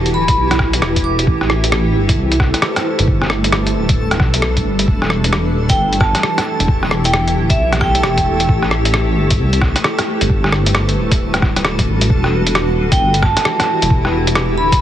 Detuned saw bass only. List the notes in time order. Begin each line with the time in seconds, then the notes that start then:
Already playing: E1
0.14 D1
0.37 B1
0.82 E1
1.27 A1
1.95 G1
2.17 C2
2.99 G1
3.75 D1
3.98 D1
4.20 B1
4.65 G1
4.88 E1
5.56 D1
5.78 G1
6.60 E1
7.36 D1
7.58 B1
8.03 E1
8.49 A1
9.16 G1
9.39 C2
10.21 G1
10.97 D1
11.20 D1
11.87 A1
12.10 E1
12.78 D1
13.00 G1
13.82 E1
14.58 D1